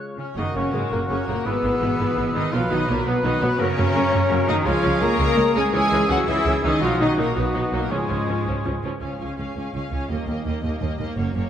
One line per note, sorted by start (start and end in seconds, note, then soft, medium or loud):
0.00 0.19 C#3 soft
0.00 0.18 G#3 soft
0.00 0.20 F4 soft
0.00 0.15 G#4 soft
0.00 0.16 C#5 medium
0.18 0.25 C#3 soft
0.18 0.36 C#4 soft
0.18 0.26 C#4 soft
0.18 0.37 C#4 medium
0.18 0.37 C#5 medium
0.18 0.26 F6 soft
0.36 0.44 F#1 soft
0.36 0.45 C#3 medium
0.36 0.88 C#3 medium
0.36 0.54 D#3 medium
0.36 0.44 A#3 medium
0.36 0.88 A#3 soft
0.36 0.45 D#4 medium
0.36 0.55 D#4 medium
0.36 0.56 D#4 medium
0.36 0.87 F#4 soft
0.36 1.48 A#4 medium
0.36 0.55 D#5 medium
0.36 1.47 C#6 medium
0.54 0.63 F#1 medium
0.54 0.72 C#3 medium
0.54 0.62 C#3 soft
0.54 0.62 A#3 soft
0.54 0.73 C#4 medium
0.54 0.74 C#4 medium
0.54 0.74 C#5 medium
0.73 0.81 F#1 soft
0.73 0.80 G#2 medium
0.73 0.81 C#3 soft
0.73 0.91 G#3 medium
0.73 0.92 G#3 medium
0.73 0.83 G#3 medium
0.73 0.81 A#3 soft
0.73 0.92 G#4 medium
0.91 0.99 F#1 medium
0.91 0.98 A#2 medium
0.91 1.04 C#3 soft
0.91 0.99 C#3 medium
0.91 1.09 A#3 medium
0.91 1.44 A#3 medium
0.91 1.00 A#3 medium
0.91 0.99 A#3 medium
0.91 1.00 A#3 medium
0.91 1.47 F#4 medium
0.91 1.10 A#4 medium
1.08 1.17 F#1 medium
1.08 1.17 C#3 soft
1.08 1.17 C#3 medium
1.08 1.17 A#3 soft
1.08 1.26 C#4 medium
1.08 1.27 C#4 medium
1.08 1.27 C#5 medium
1.12 1.28 C#4 medium
1.20 1.46 C#3 soft
1.27 1.35 F#1 soft
1.27 1.45 A#2 medium
1.27 1.35 C#3 medium
1.27 1.45 A#3 medium
1.27 1.35 A#3 medium
1.27 1.45 A#3 medium
1.27 1.46 A#3 medium
1.27 1.45 A#4 medium
1.45 1.53 G#1 medium
1.45 2.34 B2 medium
1.45 2.51 E3 medium
1.45 1.53 E3 medium
1.45 2.34 B3 medium
1.45 2.33 B3 medium
1.45 2.51 B3 medium
1.45 1.53 B3 medium
1.45 2.35 B3 medium
1.45 2.53 G#4 medium
1.45 2.51 B4 medium
1.45 2.35 B4 medium
1.45 2.55 E6 medium
1.64 1.71 G#1 medium
1.64 1.72 E3 medium
1.64 1.71 B3 soft
1.82 1.89 G#1 medium
1.82 1.89 E3 soft
1.82 1.89 B3 soft
1.99 2.06 G#1 medium
1.99 2.07 E3 medium
1.99 2.08 B3 medium
2.16 2.24 G#1 medium
2.16 2.25 E3 soft
2.16 2.24 B3 medium
2.34 2.42 G#1 medium
2.34 2.52 D#3 medium
2.34 2.42 E3 medium
2.34 2.42 B3 medium
2.34 2.54 D#4 medium
2.34 2.53 D#4 medium
2.34 2.53 D#5 medium
2.52 2.60 B1 medium
2.52 2.70 F3 medium
2.52 3.05 F#3 medium
2.52 2.61 F#3 medium
2.52 3.05 B3 medium
2.52 2.60 B3 medium
2.52 2.59 F4 medium
2.52 2.72 F4 medium
2.52 2.71 F4 medium
2.52 4.68 F#4 medium
2.52 3.05 B4 medium
2.52 2.72 F5 medium
2.52 3.59 B5 medium
2.70 2.77 B1 medium
2.70 2.77 D#3 medium
2.70 2.78 F#3 medium
2.70 2.78 B3 medium
2.70 2.91 D#4 medium
2.70 2.88 D#4 medium
2.70 2.89 D#4 medium
2.70 2.89 D#5 medium
2.89 2.96 B1 medium
2.89 3.06 A#2 medium
2.89 2.96 F#3 medium
2.89 3.06 A#3 medium
2.89 3.07 A#3 medium
2.89 3.06 A#3 medium
2.89 2.96 B3 soft
2.89 3.07 A#4 medium
3.05 3.14 B1 medium
3.05 3.23 B2 medium
3.05 3.14 F#3 medium
3.05 3.59 F#3 medium
3.05 3.24 B3 medium
3.05 3.13 B3 medium
3.05 3.24 B3 medium
3.05 3.59 B3 medium
3.05 3.16 B3 medium
3.05 3.61 B4 medium
3.05 3.25 B4 medium
3.23 3.31 B1 medium
3.23 3.31 D#3 medium
3.23 3.31 F#3 medium
3.23 3.31 B3 medium
3.23 3.41 D#4 medium
3.23 3.42 D#4 medium
3.23 3.42 D#5 medium
3.40 3.49 B1 medium
3.40 3.49 B2 medium
3.40 3.49 F#3 medium
3.40 3.58 B3 medium
3.40 3.48 B3 medium
3.40 3.59 B3 medium
3.40 3.50 B3 medium
3.40 3.60 B4 loud
3.57 3.67 F#2 medium
3.57 4.46 C#3 loud
3.57 4.65 C#3 medium
3.57 3.67 F#3 medium
3.57 3.66 A#3 medium
3.57 4.46 C#4 medium
3.57 4.51 C#4 loud
3.57 4.49 C#4 medium
3.57 4.66 C#4 medium
3.57 4.68 A#4 medium
3.57 4.67 A#5 medium
3.62 4.50 C#5 loud
3.77 3.84 F#2 medium
3.77 3.85 F#3 medium
3.77 3.85 A#3 medium
3.94 4.02 F#2 medium
3.94 4.02 F#3 medium
3.94 4.02 A#3 medium
4.12 4.20 F#2 medium
4.12 4.20 F#3 medium
4.12 4.20 A#3 medium
4.30 4.38 F#2 medium
4.30 4.37 F#3 medium
4.30 4.37 A#3 medium
4.47 4.55 F#2 medium
4.47 4.66 D#3 medium
4.47 4.54 F#3 medium
4.47 4.54 A#3 medium
4.47 4.55 D#4 medium
4.47 4.66 D#4 medium
4.47 4.65 D#4 medium
4.47 4.56 D#5 medium
4.64 4.73 C#2 medium
4.64 5.72 C#3 medium
4.64 5.01 F3 medium
4.64 4.72 G#3 medium
4.64 4.72 C#4 medium
4.64 5.72 C#4 medium
4.64 5.00 F4 medium
4.64 5.01 F4 medium
4.64 5.72 G#4 medium
4.64 6.82 G#4 medium
4.64 5.01 F5 loud
4.64 5.49 C#6 medium
4.83 4.91 C#2 medium
4.83 4.90 G#3 medium
4.83 4.90 C#4 medium
5.00 5.08 C#2 medium
5.00 5.09 G#3 medium
5.00 5.55 A#3 loud
5.00 5.09 C#4 medium
5.00 5.55 A#4 loud
5.00 5.54 A#4 loud
5.00 5.58 A#4 medium
5.00 5.56 A#5 loud
5.19 5.26 C#2 medium
5.19 5.26 G#3 medium
5.19 5.26 C#4 medium
5.36 5.44 C#2 medium
5.36 5.44 G#3 medium
5.36 5.44 C#4 medium
5.54 5.62 C#2 medium
5.54 5.63 G#3 medium
5.54 5.73 G#3 medium
5.54 5.63 C#4 medium
5.54 5.70 G#4 medium
5.54 5.72 G#4 medium
5.54 5.74 G#4 medium
5.54 5.73 G#5 medium
5.72 5.80 C#2 medium
5.72 5.81 E3 medium
5.72 6.27 E3 medium
5.72 6.09 G#3 loud
5.72 5.81 C#4 medium
5.72 6.26 C#4 medium
5.72 6.08 G#4 medium
5.72 6.25 G#4 medium
5.72 6.09 G#4 loud
5.72 6.13 G#4 loud
5.72 6.09 G#5 loud
5.72 6.84 E6 medium
5.91 5.98 C#2 medium
5.91 6.00 E3 medium
5.91 5.99 C#4 medium
6.09 6.16 C#2 medium
6.09 6.17 E3 medium
6.09 6.27 F#3 medium
6.09 6.17 C#4 soft
6.09 6.17 F#4 medium
6.09 6.28 F#4 medium
6.09 6.18 F#5 loud
6.26 6.35 C#2 medium
6.26 6.63 E3 medium
6.26 6.81 E3 medium
6.26 6.35 E3 medium
6.26 6.81 C#4 medium
6.26 6.36 C#4 medium
6.26 6.63 E4 medium
6.26 6.63 E4 loud
6.26 6.80 G#4 medium
6.26 6.63 E5 medium
6.46 6.53 C#2 medium
6.46 6.54 E3 medium
6.46 6.54 C#4 medium
6.62 6.71 C#2 medium
6.62 6.82 D#3 medium
6.62 6.71 E3 medium
6.62 6.71 C#4 medium
6.62 6.81 D#4 medium
6.62 6.82 D#4 medium
6.62 6.72 D#4 medium
6.62 6.82 D#5 medium
6.81 6.89 B1 medium
6.81 7.00 F3 medium
6.81 6.90 F#3 medium
6.81 7.33 F#3 medium
6.81 6.89 D#4 medium
6.81 7.33 D#4 medium
6.81 6.99 F4 medium
6.81 7.03 F4 medium
6.81 7.32 F#4 medium
6.81 7.61 F#4 medium
6.81 7.00 F5 medium
6.81 7.63 D#6 medium
6.99 7.08 B1 medium
6.99 7.18 D#3 medium
6.99 7.07 F#3 medium
6.99 7.07 D#4 medium
6.99 7.18 D#4 medium
6.99 7.20 D#4 medium
6.99 7.18 D#5 medium
7.17 7.26 B1 medium
7.17 7.25 A#2 medium
7.17 7.25 F#3 soft
7.17 7.36 A#3 medium
7.17 7.37 A#3 medium
7.17 7.25 D#4 soft
7.17 7.37 A#4 medium
7.36 7.44 B1 medium
7.36 7.72 B2 medium
7.36 7.43 F#3 medium
7.36 7.90 F#3 medium
7.36 7.72 B3 medium
7.36 7.73 B3 medium
7.36 7.43 D#4 medium
7.36 7.90 D#4 medium
7.36 7.92 F#4 medium
7.36 7.73 B4 medium
7.54 7.62 B1 medium
7.54 7.61 F#3 medium
7.54 7.61 D#4 medium
7.72 7.80 B1 soft
7.72 7.91 A#2 medium
7.72 7.79 F#3 medium
7.72 7.91 A#3 medium
7.72 7.82 A#3 medium
7.72 7.90 A#3 medium
7.72 7.80 D#4 medium
7.72 7.92 A#4 medium
7.90 7.99 C#2 medium
7.90 8.84 G#2 medium
7.90 7.98 F3 medium
7.90 8.84 F3 medium
7.90 8.81 G#3 medium
7.90 8.82 G#3 medium
7.90 8.84 G#3 medium
7.90 7.98 C#4 medium
7.90 8.84 C#4 medium
7.90 8.79 F4 medium
7.90 8.83 G#4 medium
7.90 8.84 G#4 medium
7.90 8.79 C#6 medium
8.09 8.17 C#2 medium
8.09 8.17 F3 soft
8.09 8.17 C#4 medium
8.28 8.35 C#2 medium
8.28 8.36 F3 soft
8.28 8.36 C#4 soft
8.47 8.54 C#2 medium
8.47 8.54 F3 soft
8.47 8.54 C#4 soft
8.65 8.72 C#2 medium
8.65 8.72 F3 soft
8.65 8.72 C#4 soft
8.83 8.91 C#2 soft
8.83 8.91 F3 medium
8.83 8.91 C#4 medium
9.01 9.08 C#2 soft
9.01 9.09 C#2 soft
9.01 10.06 G#3 soft
9.01 9.19 C#4 soft
9.01 10.06 F4 soft
9.01 9.20 G#4 soft
9.01 9.19 F5 soft
9.20 9.27 C#2 soft
9.20 9.37 C#4 soft
9.20 9.38 G#4 soft
9.20 9.37 F5 soft
9.38 9.45 C#2 soft
9.38 9.46 C#2 soft
9.38 9.56 C#4 soft
9.38 9.57 G#4 soft
9.38 9.56 F5 soft
9.56 9.63 C#2 soft
9.56 9.64 C#2 soft
9.56 9.73 C#4 soft
9.56 9.73 G#4 soft
9.56 9.74 F5 soft
9.74 9.81 C#2 soft
9.74 9.82 C#2 soft
9.74 9.91 C#4 soft
9.74 9.91 G#4 soft
9.74 9.92 F5 soft
9.91 9.98 C#2 soft
9.91 10.00 C#2 soft
9.91 10.10 C#4 soft
9.91 10.09 G#4 soft
9.91 10.10 F5 soft
10.10 10.17 D#2 soft
10.10 11.13 G3 soft
10.10 10.27 A#3 soft
10.10 11.14 D#4 medium
10.10 10.27 G4 soft
10.10 10.27 D#5 soft
10.27 10.34 D#2 soft
10.27 10.35 D#2 soft
10.27 10.46 A#3 soft
10.27 10.44 G4 soft
10.27 10.45 D#5 soft
10.45 10.52 D#2 soft
10.45 10.53 D#2 soft
10.45 10.64 A#3 soft
10.45 10.63 G4 soft
10.45 10.62 D#5 soft
10.63 10.71 D#2 medium
10.63 10.82 A#3 soft
10.63 10.81 G4 soft
10.63 10.79 D#5 soft
10.80 10.88 D#2 soft
10.80 10.88 D#2 medium
10.80 11.00 A#3 soft
10.80 10.99 G4 soft
10.80 10.97 D#5 soft
10.98 11.06 D#2 soft
10.98 11.07 D#2 soft
10.98 11.17 A#3 medium
10.98 11.17 G4 soft
10.98 11.16 D#5 soft
11.17 11.25 F#1 medium
11.17 11.25 F#2 medium
11.17 11.50 A#3 medium
11.17 11.35 A#3 soft
11.17 11.50 C#4 medium
11.17 11.35 F#4 soft
11.17 11.34 C#5 soft
11.35 11.43 F#1 soft
11.35 11.42 F#2 medium
11.35 11.50 A#3 soft
11.35 11.50 F#4 soft
11.35 11.50 C#5 soft